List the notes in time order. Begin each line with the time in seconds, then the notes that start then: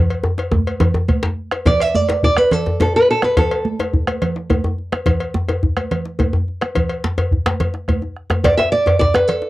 0.10 cowbell
0.23 bombo rim, djembe tone
0.38 bombo rim, cowbell, djembe slap, djembe tone
0.52 bombo rim, bombo low, djembe tone, high conga
0.66 cowbell, djembe slap
0.80 cowbell, djembe tone, low conga, djembe bass
0.94 djembe slap, djembe tone, high conga
1.08 bombo low, cowbell, high conga
1.23 djembe slap, djembe tone
1.52 bombo rim, cowbell, djembe slap
1.66 D5, bombo low, cowbell, low conga, djembe bass
1.80 E5, cowbell
1.95 D5, high conga, djembe tone
2.09 cowbell, djembe slap, djembe tone
2.23 D5, bombo low, djembe bass
2.37 B4, bombo rim, cowbell, high conga
2.52 A4, bombo rim, cowbell, low conga
2.66 djembe slap, djembe tone
2.80 A4, cowbell, djembe slap, high conga, djembe bass
2.94 B4, djembe tone
3.08 A4, djembe slap, high conga
3.22 B4, bombo rim, cowbell, djembe slap, high conga
3.37 A4, bombo low, cowbell, djembe bass, low conga
3.51 cowbell, high conga
3.65 high conga
3.80 cowbell, djembe slap, djembe tone
3.94 bombo low, djembe bass
4.07 bombo rim, cowbell, high conga
4.22 bombo rim, cowbell, low conga
4.36 djembe slap
4.50 bombo low, cowbell, high conga, djembe tone, djembe bass
4.64 djembe tone
4.78 djembe slap, high conga
4.92 bombo rim, cowbell, djembe slap, high conga
5.06 bombo low, cowbell, djembe bass, low conga
5.20 cowbell
5.34 high conga, djembe tone
5.48 cowbell, djembe slap, djembe tone
5.63 bombo low, djembe bass
5.77 bombo rim, cowbell, high conga
5.91 bombo rim, cowbell, low conga
6.05 djembe slap
6.19 bombo low, cowbell, djembe tone, high conga, djembe bass
6.33 djembe tone
6.48 djembe slap, high conga
6.61 bombo rim, cowbell, djembe slap, high conga
6.75 bombo low, cowbell, djembe bass, low conga
6.89 cowbell
7.03 djembe slap, high conga
7.18 cowbell, djembe slap, djembe tone
7.31 bombo low, djembe slap, djembe bass
7.46 bombo rim, cowbell, djembe slap, high conga
7.60 bombo rim, cowbell, djembe tone, low conga
7.74 bombo rim, djembe slap
7.88 bombo rim, bombo low, cowbell, djembe slap, high conga, djembe bass
8.02 djembe tone, high conga
8.16 bombo rim
8.30 bombo rim, cowbell, djembe slap, djembe tone, high conga
8.44 D5, bombo low, cowbell, djembe slap, djembe bass, low conga
8.57 E5, cowbell, djembe slap, high conga
8.72 D5, high conga
8.86 cowbell, djembe slap, djembe tone
8.99 D5, bombo low, djembe slap, djembe bass
9.14 B4, bombo rim, cowbell, djembe slap, high conga
9.28 A4, bombo rim, cowbell, low conga
9.42 djembe slap